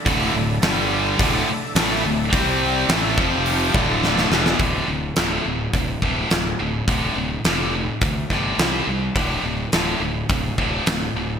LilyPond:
<<
  \new Staff \with { instrumentName = "Tonewheel organ" } { \time 4/4 \key d \minor \tempo 4 = 105 << { <d' e''>4 g4 e''2 | <c' d''>4 <d' e''>8 <f' g''>4 <d' e''>4. | r1 | r1 |
r1 | } \\ { a'1 | g'4 a'8 c''4 a'4. | r1 | r1 |
r1 | } >> }
  \new Staff \with { instrumentName = "Distorted electric guitar" } { \clef bass \time 4/4 \key d \minor <d, a, d>8 <d, a,>8 <g, d g>4 <d, a, d>8 r8 <a, e a>8 <d, a,>8 | <c g c'>4 <a, e a>8 <f, c f>4 <d, a, d>4 <e, b, e>8 | r1 | r1 |
r1 | }
  \new Staff \with { instrumentName = "Distorted electric guitar" } { \clef bass \time 4/4 \key d \minor <d, a, d>8 <d, a,>8 <g, d g>4 <d, a, d>8 r8 <a, e a>8 <d, a,>8 | <c g c'>4 <a, e a>8 <f, c f>4 <d, a, d>4 <e, b, e>8 | <d, a, d>8 <d, a,>8 <d, a, d>8 <d, a,>8 <d, a,>8 <d, a, d>8 <d, a,>8 <d, a,>8 | <d, a, d>8 <d, a,>8 <d, a, d>8 <d, a,>8 <d, a,>8 <d, a, d>8 <c g c'>8 <c g>8 |
<d, a, d>8 <d, a,>8 <d, a, d>8 <d, a,>8 <d, a,>8 <d, a, d>8 <d, a,>8 <d, a,>8 | }
  \new Staff \with { instrumentName = "Fingered electric bass" } { \clef bass \time 4/4 \key d \minor d,,8 d,,8 g,,4 d,,8 r8 a,,8 d,,8 | c,4 a,,8 f,,4 d,,4 e,,8 | d,,8 d,,8 d,,8 d,,8 d,,8 d,,8 d,,8 d,,8 | d,,8 d,,8 f,,4 d,8 g,,8 c,8 c,8 |
d,,8 d,,8 d,,8 d,,8 d,,8 d,,8 d,,8 d,,8 | }
  \new DrumStaff \with { instrumentName = "Drums" } \drummode { \time 4/4 <hho bd>4 <hho sn>4 <hho bd>4 <hho sn>4 | <hho bd>4 <hho sn>8 bd8 hho8 bd8 sn16 sn16 sn16 sn16 | <hho bd>4 <hho sn>4 <hho bd>8 bd8 <hho sn>4 | <hho bd>4 <hho sn>4 <hho bd>8 <bd sn>8 <hho sn>4 |
<hho bd>4 <hho sn>4 <hho bd>8 bd8 <hho sn>4 | }
>>